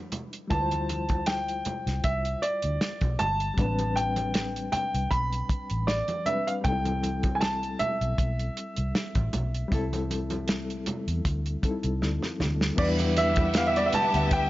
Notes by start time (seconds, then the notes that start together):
Already playing: G3 D4 E4 B4
0.12 closed hi-hat, low conga
0.33 closed hi-hat
0.47 D2 G3 E4 A5, kick, closed hi-hat, muted conga, low conga
0.52 F4 B4
0.60 C5
0.71 closed hi-hat, high conga
0.89 closed hi-hat, muted conga, high conga
1.09 kick, closed hi-hat, high conga
1.26 G5, snare, closed hi-hat, muted conga
1.48 closed hi-hat
1.65 muted fingered electric bass stroke, closed hi-hat, muted conga, low conga
1.87 C2, snare, closed hi-hat
2.04 C2 E5, kick, closed hi-hat, muted conga
2.25 closed hi-hat
2.42 D5, closed hi-hat
2.62 D2, closed hi-hat
2.81 snare, closed hi-hat, muted conga
3.01 B1, kick, closed hi-hat, high conga
3.19 G1 A5, closed hi-hat, low conga
3.40 closed hi-hat
3.54 A1 G3 B3, kick, closed hi-hat
3.58 D4 B4, low conga
3.62 C4
3.79 closed hi-hat, high conga
3.96 G5, closed hi-hat, high conga
4.16 closed hi-hat, high conga
4.34 snare, closed hi-hat, muted conga
4.56 closed hi-hat
4.72 G5, muted fingered electric bass stroke, closed hi-hat, low conga
4.94 C2, closed hi-hat
5.11 B1 B5, kick, closed hi-hat
5.33 closed hi-hat
5.49 kick, closed hi-hat
5.70 A1, closed hi-hat
5.87 D5, snare, closed hi-hat, muted conga
6.08 closed hi-hat, high conga
6.24 G3 C4 D4 B4 E5, closed hi-hat, muted conga, low conga
6.47 F5, closed hi-hat
6.61 C2 G3 C4 D#4 G5, kick, closed hi-hat, muted conga, low conga
6.67 A4
6.72 E4
6.85 closed hi-hat, high conga
7.03 closed hi-hat, high conga
7.23 kick, closed hi-hat, high conga
7.35 G#5
7.41 A5, snare, closed hi-hat, muted conga
7.63 closed hi-hat
7.79 E5, muted fingered electric bass stroke, closed hi-hat, muted conga, low conga
8.01 B1, closed hi-hat
8.18 B1, kick, closed hi-hat, muted conga
8.39 closed hi-hat
8.57 closed hi-hat
8.77 C2, closed hi-hat
8.95 snare, closed hi-hat
9.15 A1, kick, closed hi-hat, high conga
9.33 B1, closed hi-hat, muted conga, low conga
9.55 closed hi-hat
9.68 C2 G3 C4, kick, closed hi-hat, low conga
9.72 E4 A4
9.93 closed hi-hat, high conga
10.11 closed hi-hat, muted conga, high conga
10.30 closed hi-hat, high conga
10.48 snare, closed hi-hat
10.70 closed hi-hat
10.86 muted fingered electric bass stroke, closed hi-hat, muted conga, low conga
11.07 E2, closed hi-hat
11.25 D2, kick, closed hi-hat, muted conga
11.46 closed hi-hat
11.62 G3 C4 D#4 A4, kick, closed hi-hat, muted conga
11.71 E4
11.83 C2, closed hi-hat
12.02 D2, snare
12.22 snare, high conga
12.40 D2, snare, muted conga, low conga
12.61 snare
12.76 E2 D3 F3 G3 B3 D4 E4 G4 D5 E5, kick, crash, muted conga
12.80 G3 E4 B4
12.99 closed hi-hat, high conga
13.17 E5, closed hi-hat, high conga
13.36 kick, closed hi-hat, high conga
13.54 F5, snare, closed hi-hat
13.67 E5
13.76 D5, closed hi-hat
13.86 E5
13.93 A5, muted fingered electric bass stroke, closed hi-hat, muted conga, low conga
14.14 D2, closed hi-hat
14.31 G5, kick, closed hi-hat